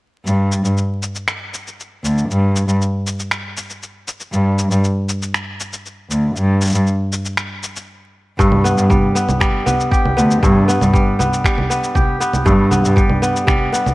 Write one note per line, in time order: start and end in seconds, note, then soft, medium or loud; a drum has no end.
0.26 0.57 G2 medium
0.26 shaker soft
0.52 shaker medium
0.64 0.73 G2 medium
0.64 shaker soft
0.77 shaker soft
1.03 shaker medium
1.15 shaker soft
1.28 finger snap medium
1.28 shaker soft
1.54 shaker medium
1.67 shaker soft
1.80 shaker soft
2.04 2.21 D2 medium
2.04 shaker medium
2.18 shaker soft
2.29 2.61 G2 medium
2.29 shaker soft
2.56 shaker medium
2.68 2.76 G2 medium
2.68 shaker soft
2.82 shaker soft
3.07 shaker medium
3.19 shaker soft
3.31 finger snap medium
3.31 shaker soft
3.57 shaker medium
3.70 shaker soft
3.83 shaker soft
4.08 shaker medium
4.20 shaker soft
4.33 4.64 G2 medium
4.33 shaker soft
4.59 shaker medium
4.71 4.79 G2 medium
4.71 shaker soft
4.84 shaker soft
5.09 shaker medium
5.22 shaker soft
5.34 finger snap medium
5.34 shaker soft
5.60 shaker medium
5.73 shaker soft
5.86 shaker soft
6.10 6.28 D2 medium
6.10 shaker medium
6.36 6.67 G2 medium
6.36 shaker soft
6.62 shaker medium
6.64 shaker soft
6.67 shaker soft
6.69 shaker soft
6.72 6.83 G2 medium
6.72 shaker soft
6.75 shaker soft
6.87 shaker soft
7.12 shaker medium
7.25 shaker soft
7.37 finger snap medium
7.37 shaker soft
7.63 shaker medium
7.76 shaker soft
8.39 10.42 G2 medium
8.39 8.71 G2 medium
8.39 kick medium
8.39 shaker soft
8.52 low conga medium
8.64 9.15 B3 medium
8.64 shaker medium
8.77 8.86 G2 medium
8.77 shaker soft
8.90 9.40 G3 medium
8.90 kick loud
8.90 low conga medium
8.90 shaker soft
9.15 9.66 B3 medium
9.15 shaker medium
9.29 low conga medium
9.29 shaker soft
9.40 10.93 G3 medium
9.40 finger snap medium
9.40 kick loud
9.40 shaker soft
9.66 10.16 B3 medium
9.66 low conga medium
9.66 shaker medium
9.80 shaker soft
9.91 11.94 G4 medium
9.91 kick medium
9.91 shaker soft
10.06 low conga medium
10.17 10.34 D2 medium
10.17 10.68 B3 medium
10.17 shaker medium
10.31 shaker soft
10.42 10.74 G2 medium
10.42 12.44 G2 medium
10.42 kick loud
10.42 low conga medium
10.42 shaker soft
10.68 11.19 B3 medium
10.68 shaker medium
10.81 10.89 G2 medium
10.81 low conga medium
10.81 shaker soft
10.93 11.44 G3 medium
10.93 kick loud
10.93 shaker soft
11.19 11.69 B3 medium
11.19 low conga medium
11.19 shaker medium
11.33 shaker soft
11.44 12.95 G3 medium
11.44 finger snap medium
11.44 kick loud
11.44 shaker soft
11.58 low conga medium
11.70 12.20 B3 medium
11.70 shaker medium
11.84 shaker soft
11.95 13.94 G4 medium
11.95 kick loud
11.95 low conga medium
11.95 shaker soft
12.20 12.70 B3 medium
12.20 shaker medium
12.33 low conga medium
12.33 shaker soft
12.46 13.94 G2 medium
12.46 12.78 G2 medium
12.46 kick loud
12.46 shaker soft
12.71 13.22 B3 medium
12.71 low conga medium
12.71 shaker medium
12.84 12.93 G2 medium
12.84 shaker soft
12.96 13.47 G3 medium
12.96 kick loud
12.96 shaker soft
13.10 low conga medium
13.22 13.72 B3 medium
13.22 shaker medium
13.36 shaker soft
13.47 13.94 G3 medium
13.47 finger snap medium
13.47 kick loud
13.47 low conga medium
13.47 shaker soft
13.72 13.94 B3 medium
13.72 shaker medium
13.86 low conga medium
13.86 shaker soft